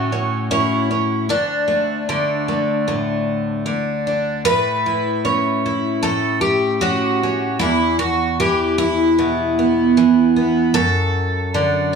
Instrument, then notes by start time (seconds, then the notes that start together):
twelve-string acoustic guitar
Already playing: A2 C#4 F#4
0.12 C#4
0.51 C#4 E4
0.91 C#4
1.29 D2 D4
1.68 A3
2.09 D3 A3
2.48 A3
2.88 A2
3.66 D3
4.07 D4
4.45 A2 B4
4.86 E4
5.25 C#4
5.66 E4
6.03 A2 A4
6.41 G4
6.81 C#4 F#4
7.23 C#4
7.59 E2 E4
7.99 F#4
8.40 E3 G4
8.78 E4
9.19 B2
9.59 B3
9.97 E3
10.36 B3
10.74 F#2 A4
11.54 D3